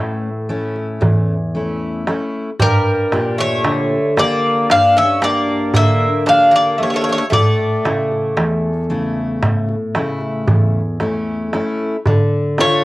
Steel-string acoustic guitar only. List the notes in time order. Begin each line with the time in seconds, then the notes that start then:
Already playing: A2 A3 C#4 E4
0.49 A3 C#4 E4
1.01 E2
1.54 A3 C#4 E4
2.07 A3 C#4 E4
2.61 G2
3.12 A#2 D4 G4
3.64 D3
4.17 A#3 D4 G4
4.70 G2
5.22 A#3 D4 G4
5.75 D3
6.29 A#3 D4 G4
6.80 A#3 D4 G4
7.33 A2
7.85 C#3 A3 E4
8.37 E2
8.90 C#3 A3 E4
9.43 A2
9.96 C#3 A3 E4
10.48 E2
11.01 A3 C#4 E4
11.53 A3 C#4 E4
12.07 D3
12.58 D4 F4 A4